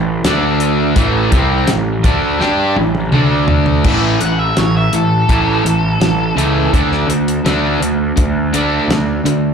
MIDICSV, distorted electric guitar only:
0, 0, Header, 1, 2, 480
1, 0, Start_track
1, 0, Tempo, 721154
1, 643, Time_signature, 4, 2, 24, 8
1, 6349, End_track
2, 0, Start_track
2, 0, Title_t, "Distorted electric guitar"
2, 0, Program_c, 0, 30
2, 0, Note_on_c, 0, 45, 61
2, 0, Note_on_c, 0, 52, 71
2, 117, Note_off_c, 0, 45, 0
2, 118, Note_off_c, 0, 52, 0
2, 169, Note_on_c, 0, 50, 88
2, 175, Note_on_c, 0, 57, 89
2, 176, Note_on_c, 0, 62, 96
2, 636, Note_off_c, 0, 50, 0
2, 639, Note_off_c, 0, 57, 0
2, 639, Note_on_c, 0, 45, 92
2, 642, Note_off_c, 0, 62, 0
2, 646, Note_on_c, 0, 52, 104
2, 647, Note_on_c, 0, 57, 107
2, 873, Note_off_c, 0, 45, 0
2, 877, Note_off_c, 0, 52, 0
2, 877, Note_off_c, 0, 57, 0
2, 886, Note_on_c, 0, 48, 85
2, 887, Note_on_c, 0, 55, 83
2, 896, Note_on_c, 0, 60, 95
2, 1117, Note_off_c, 0, 48, 0
2, 1117, Note_off_c, 0, 55, 0
2, 1122, Note_off_c, 0, 60, 0
2, 1125, Note_on_c, 0, 45, 64
2, 1126, Note_on_c, 0, 52, 68
2, 1315, Note_off_c, 0, 45, 0
2, 1316, Note_off_c, 0, 52, 0
2, 1363, Note_on_c, 0, 50, 89
2, 1368, Note_on_c, 0, 57, 96
2, 1372, Note_on_c, 0, 62, 85
2, 1591, Note_off_c, 0, 57, 0
2, 1592, Note_off_c, 0, 62, 0
2, 1594, Note_on_c, 0, 55, 101
2, 1595, Note_off_c, 0, 50, 0
2, 1600, Note_on_c, 0, 62, 92
2, 1602, Note_on_c, 0, 67, 106
2, 1831, Note_off_c, 0, 55, 0
2, 1834, Note_off_c, 0, 62, 0
2, 1835, Note_off_c, 0, 67, 0
2, 1839, Note_on_c, 0, 45, 68
2, 1843, Note_on_c, 0, 52, 66
2, 2033, Note_off_c, 0, 45, 0
2, 2035, Note_off_c, 0, 52, 0
2, 2077, Note_on_c, 0, 50, 98
2, 2083, Note_on_c, 0, 57, 91
2, 2086, Note_on_c, 0, 62, 97
2, 2553, Note_off_c, 0, 50, 0
2, 2556, Note_off_c, 0, 57, 0
2, 2557, Note_off_c, 0, 62, 0
2, 2566, Note_on_c, 0, 45, 89
2, 2566, Note_on_c, 0, 52, 88
2, 2571, Note_on_c, 0, 57, 86
2, 2790, Note_off_c, 0, 45, 0
2, 2790, Note_off_c, 0, 52, 0
2, 2793, Note_off_c, 0, 57, 0
2, 2804, Note_on_c, 0, 45, 61
2, 2806, Note_on_c, 0, 52, 70
2, 3019, Note_off_c, 0, 45, 0
2, 3020, Note_off_c, 0, 52, 0
2, 3052, Note_on_c, 0, 45, 73
2, 3053, Note_on_c, 0, 52, 76
2, 3264, Note_off_c, 0, 45, 0
2, 3264, Note_off_c, 0, 52, 0
2, 3290, Note_on_c, 0, 45, 61
2, 3292, Note_on_c, 0, 52, 72
2, 3503, Note_off_c, 0, 45, 0
2, 3504, Note_off_c, 0, 52, 0
2, 3520, Note_on_c, 0, 45, 94
2, 3524, Note_on_c, 0, 52, 88
2, 3530, Note_on_c, 0, 57, 96
2, 3743, Note_off_c, 0, 45, 0
2, 3749, Note_off_c, 0, 52, 0
2, 3751, Note_on_c, 0, 45, 75
2, 3752, Note_off_c, 0, 57, 0
2, 3757, Note_on_c, 0, 52, 84
2, 3973, Note_off_c, 0, 45, 0
2, 3976, Note_off_c, 0, 52, 0
2, 3994, Note_on_c, 0, 52, 78
2, 3996, Note_on_c, 0, 45, 73
2, 4215, Note_off_c, 0, 52, 0
2, 4216, Note_off_c, 0, 45, 0
2, 4233, Note_on_c, 0, 45, 83
2, 4240, Note_on_c, 0, 57, 97
2, 4241, Note_on_c, 0, 52, 84
2, 4464, Note_off_c, 0, 45, 0
2, 4468, Note_off_c, 0, 52, 0
2, 4468, Note_off_c, 0, 57, 0
2, 4478, Note_on_c, 0, 50, 83
2, 4481, Note_on_c, 0, 57, 91
2, 4487, Note_on_c, 0, 62, 91
2, 4704, Note_off_c, 0, 50, 0
2, 4708, Note_off_c, 0, 57, 0
2, 4711, Note_off_c, 0, 62, 0
2, 4712, Note_on_c, 0, 50, 61
2, 4718, Note_on_c, 0, 57, 69
2, 4934, Note_off_c, 0, 50, 0
2, 4937, Note_off_c, 0, 57, 0
2, 4956, Note_on_c, 0, 50, 82
2, 4961, Note_on_c, 0, 57, 97
2, 4964, Note_on_c, 0, 62, 86
2, 5186, Note_off_c, 0, 50, 0
2, 5188, Note_off_c, 0, 57, 0
2, 5190, Note_off_c, 0, 62, 0
2, 5195, Note_on_c, 0, 50, 69
2, 5197, Note_on_c, 0, 57, 78
2, 5416, Note_off_c, 0, 50, 0
2, 5417, Note_off_c, 0, 57, 0
2, 5430, Note_on_c, 0, 50, 69
2, 5436, Note_on_c, 0, 57, 82
2, 5653, Note_off_c, 0, 50, 0
2, 5656, Note_off_c, 0, 57, 0
2, 5676, Note_on_c, 0, 50, 93
2, 5686, Note_on_c, 0, 62, 101
2, 5687, Note_on_c, 0, 57, 92
2, 5906, Note_off_c, 0, 50, 0
2, 5910, Note_off_c, 0, 62, 0
2, 5911, Note_off_c, 0, 57, 0
2, 5923, Note_on_c, 0, 50, 66
2, 5928, Note_on_c, 0, 57, 82
2, 6139, Note_off_c, 0, 50, 0
2, 6142, Note_off_c, 0, 57, 0
2, 6160, Note_on_c, 0, 50, 70
2, 6161, Note_on_c, 0, 57, 81
2, 6349, Note_off_c, 0, 50, 0
2, 6349, Note_off_c, 0, 57, 0
2, 6349, End_track
0, 0, End_of_file